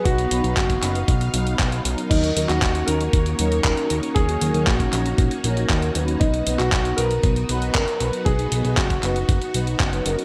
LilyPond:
<<
  \new Staff \with { instrumentName = "Grand piano" } { \time 4/4 \key ces \lydian \tempo 4 = 117 fis'4 fis'2~ fis'8 r8 | ees'8. ges'8. bes'4 r8 bes'4 | aes'4 ges'2~ ges'8 r8 | dis'8. fis'8. bes'4 r8 bes'4 |
aes'4 fis'2~ fis'8 r8 | }
  \new Staff \with { instrumentName = "Analog polysynth" } { \time 4/4 \key ces \lydian <fis b dis' b'>8 <fis b dis' b'>8 r8 <fis b dis' b'>16 r8. <fis b dis' b'>8. <fis b dis' b'>16 <fis des' dis' bes'>8~ | <fis des' dis' bes'>8 <ges des' ees' bes'>8 r8 <ges des' ees' bes'>16 r8. <ges des' ees' bes'>4 <ges des' ees' bes'>8~ | <ges des' ees' bes'>8 <ges des' ees' bes'>8 r8 <ges des' ees' bes'>16 r8. <ges des' ees' bes'>4 <ges ces' ees' ces''>8~ | <ges ces' ees' ces''>8 <fis b dis' b'>8 r8 <fis b dis' b'>16 r8. <fis b dis' b'>4 <fis b dis' b'>8~ |
<fis b dis' b'>8 <fis b dis' b'>8 r8 <fis b dis' b'>16 r8. <fis b dis' b'>8. <fis b dis' b'>16 <fis des' dis' bes'>8 | }
  \new Staff \with { instrumentName = "String machine" } { \time 4/4 \key ces \lydian << { <b f''>1 | <bes des' des''>1~ | <bes des' des''>1 | b1~ |
b1 | } \\ { dis'1 | ges'1~ | ges'1~ | ges'1~ |
ges'1 | } >> }
  \new Staff \with { instrumentName = "Analog synth bass" } { \clef bass \time 4/4 \key ces \lydian b,,8 b,,16 b,,16 fis,,8 fis,,8 b,,8 b,,8 b,,8 b,,16 r16 | ees,8 ees,16 ees,16 ees,8 ees,8 ees,8 ees,8 ees,,16 r16 ees,16 r16 | ees,8 ees,16 ees,16 bes,,8 bes,,8 bes,,16 r16 bes,,8 ees,8 ees,8 | b,,8 b,,16 b,,16 b,,8 b,,8 b,,8 b,,8 fis,,16 r16 b,,16 r16 |
b,,8 b,,16 b,,16 fis,,8 fis,,8 fis,,16 r16 b,,8 fis,,8 fis,,16 r16 | }
  \new DrumStaff \with { instrumentName = "Drums" } \drummode { \time 4/4 <hh bd>16 hh16 hh16 hh16 <hc hh bd>16 <hh bd>16 <hc hh>16 hh16 <hh bd>16 hh16 hh16 hh16 <hc hh bd>16 hh16 hh16 hh16 | <cymc hh bd>16 hh16 hh16 <hc hh>16 <hc hh bd>16 hh16 hh16 hh16 <hh bd>16 hh16 hh16 hh16 <hc hh bd>16 hh16 hh16 hh16 | <hh bd>16 hh16 hh16 hh16 <hc hh bd>16 <hh bd>16 <hc hh>16 hh16 <hh bd>16 hh16 hh16 hh16 <hc hh bd>16 hh16 hh16 hh16 | <hh bd>16 hh16 hh16 <hc hh>16 <hc hh bd>16 hh16 hh16 hh16 <hh bd>16 hh16 hh16 hh16 <hc hh bd>16 hh16 hh16 hh16 |
<hh bd>16 hh16 hh16 hh16 <hc hh bd>16 <hh bd>16 <hc hh>16 hh16 <hh bd>16 hh16 hh16 hh16 <hc hh bd>16 hh16 hh16 hh16 | }
>>